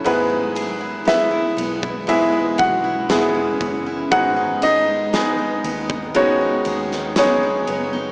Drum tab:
RD |x-x-x-x-x-x-x-x-|x-x-x-x-x-x-x-x-|
SD |----o-------o---|----o------oo---|
BD |-------o--o---o-|o------o--------|